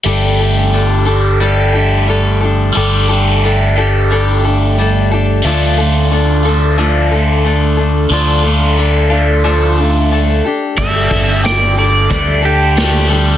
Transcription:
<<
  \new Staff \with { instrumentName = "Pedal steel guitar" } { \time 4/4 \key g \dorian \tempo 4 = 90 r1 | r1 | r1 | r1 |
e''4 d''8 d''4 g'4 r8 | }
  \new Staff \with { instrumentName = "Steel-string acoustic guitar" } { \time 4/4 \key g \dorian <g d' g' a'>8 <d' g' a'>8 <g d' g' a'>8 <d' g' a'>8 <g d' g' a'>8 <d' g' a'>8 <g d' g' a'>8 <d' g' a'>8 | <g d' g' a'>8 <d' g' a'>8 <g d' g' a'>8 <d' g' a'>8 <g d' g' a'>8 <d' g' a'>8 <g d' g' a'>8 <d' g' a'>8 | <d f a d' a'>8 <a d' a'>8 <a d' a'>8 <a d' a'>8 <d f a d' a'>8 <a d' a'>8 <a d' a'>8 <a d' a'>8 | <d f a d' a'>8 <a d' a'>8 <a d' a'>8 <a d' a'>8 <d f a d' a'>8 <a d' a'>8 <a d' a'>8 <d' g' a'>8 |
<g a d' g' a'>8 <d' g' a'>8 <a d' g' a'>8 <d' g' a'>8 <g a d' g' a'>8 <d' g' a'>8 <a d' g' a'>8 <d' g' a'>8 | }
  \new Staff \with { instrumentName = "Overdriven electric guitar" } { \time 4/4 \key g \dorian <g a d' g'>4. <g a d' g'>2~ <g a d' g'>8 | <g a d' g'>4. <g a d' g'>2~ <g a d' g'>8 | <d a d' f'>4. <d a d' f'>2~ <d a d' f'>8 | <d a d' f'>4. <d a d' f'>2 r8 |
g8 a8 g'8 d'8 a8 d'8 a8 g8 | }
  \new Staff \with { instrumentName = "Fingered electric bass" } { \clef bass \time 4/4 \key g \dorian g,,1 | g,,1 | d,1 | d,2.~ d,8 r8 |
g,,8 g,,4. d,2 | }
  \new DrumStaff \with { instrumentName = "Drums" } \drummode { \time 4/4 r4 r4 r4 r4 | r4 r4 r4 r4 | r4 r4 r4 r4 | r4 r4 r4 r4 |
<cymc bd>8 bd8 <hh sn>4 <hh bd>4 <hh sn>4 | }
>>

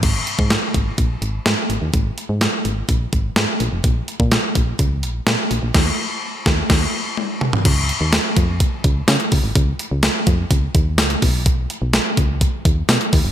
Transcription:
<<
  \new Staff \with { instrumentName = "FM bass" } { \clef bass \time 4/4 \key des \lydian \tempo 4 = 126 aes,,8 r16 aes,8 r16 aes,,8 bes,,8 aes,,8 aes,16 r16 aes,,16 ees,16 | aes,,8 r16 aes,8 r16 aes,,8 bes,,8 aes,,8 aes,16 r16 bes,,16 f,,16 | bes,,8 r16 bes,8 r16 bes,,8 des,8 bes,,8 bes,16 r16 bes,,16 bes,,16 | ees,8 r4 ees,8 ees,8 r4. |
des,8. ees,8 r16 f,8. r16 des,8 des16 r16 des,16 aes,,16 | des,8 r16 des,8 r16 f,8 des,8 ees,8 des,8 b,,8~ | b,,8. b,,8 r16 des,8. r16 dis,8 b,16 r16 dis,16 fis,,16 | }
  \new DrumStaff \with { instrumentName = "Drums" } \drummode { \time 4/4 <cymc hh bd>8 hh16 bd16 <hh sn>8 <hh bd>8 <hh bd>8 hh8 <hh sn>8 hh8 | <hh bd>8 hh8 <hh sn>8 hh8 <hh bd>8 <hh bd>8 <hh sn>8 hh8 | <hh bd>8 hh16 bd16 <hh sn>8 <hh bd>8 <hh bd>8 hh8 <hh sn>8 hh8 | <cymc bd sn>4 r8 <bd sn>8 <cymc bd sn>4 tommh8 toml16 tomfh16 |
<cymc hh bd>8 hh8 <hh sn tamb>8 <hh bd>8 <hh bd>8 <hh bd>8 <hh sn tamb>16 hh16 <hho bd>8 | <hh bd>8 hh8 <hh sn tamb>8 <hh bd>8 <hh bd>8 <hh bd>8 <hh sn tamb>16 hh16 <hho bd>8 | <hh bd>8 hh8 <hh sn tamb>8 <hh bd>8 <hh bd>8 <hh bd>8 <hh sn tamb>16 hh16 <hho bd>8 | }
>>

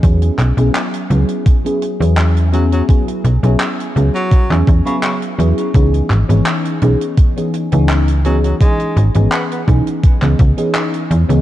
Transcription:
<<
  \new Staff \with { instrumentName = "FM electric piano" } { \time 4/4 \key e \major \tempo 4 = 84 <fis b cis' e' gis'>8. <fis b cis' e' gis'>8. <fis b cis' e' gis'>8. <fis b cis' e' gis'>8 <fis b cis' e' gis'>8. <fis b cis' e' gis'>8 | <fis b cis' e' gis'>8. <fis b cis' e' gis'>8. <fis b cis' e' gis'>8. <fis b cis' e' gis'>8 <fis b cis' e' gis'>8. <fis b cis' e' gis'>8 | <e b cis' dis' gis'>8. <e b cis' dis' gis'>8. <e b cis' dis' gis'>8. <e b cis' dis' gis'>8 <e b cis' dis' gis'>8. <e b cis' dis' gis'>8 | <e b cis' dis' gis'>8. <e b cis' dis' gis'>8. <e b cis' dis' gis'>8. <e b cis' dis' gis'>8 <e b cis' dis' gis'>4 <e b cis' dis' gis'>16 | }
  \new Staff \with { instrumentName = "Tenor saxophone" } { \clef bass \time 4/4 \key e \major r2. r8 fis16 fis16 | r4. r16 fis8 r8 cis16 cis16 r8. | r2. r8 fis16 fis16 | gis8 r8 b16 b16 r2 r8 | }
  \new Staff \with { instrumentName = "FM bass" } { \clef bass \time 4/4 \key e \major e,8 b,,16 b,,16 r8 cis,16 r4 e,4~ e,16 | r8 b,,16 b,,16 r8 cis,16 r8 e,16 e,16 r8. e,16 r16 | cis,8 gis,,16 gis,,16 r8 b,,16 r4 cis,4~ cis,16 | r8 gis,,16 gis,,16 r8 b,,16 r8 cis,16 cis,16 r8. e,16 cis,16 | }
  \new DrumStaff \with { instrumentName = "Drums" } \drummode { \time 4/4 <hh bd>16 hh16 <hc hh>16 hh16 <hc hh>16 hh16 hh16 hh16 <hh bd>16 hh16 hh16 hh16 <hc hh>16 hh16 hh16 hh16 | <hh bd>16 hh16 hh16 hh16 <hc hh>16 hh16 hh16 hh16 <hh bd>16 <hc hh>16 <hh bd>16 hh16 <hc hh>16 hh16 hh16 hh16 | <hh bd>16 hh16 <hc hh>16 hh16 <hc hh>16 hh16 hh16 hh16 <hh bd>16 hh16 hh16 hh16 <hc hh>16 hh16 hh16 hh16 | <hh bd>16 hh16 hh16 hh16 <hc hh>16 hh16 <hh bd>16 hh16 <hh bd>16 <hc hh>16 <hh bd>16 hh16 <hc hh>16 hh16 hh16 hh16 | }
>>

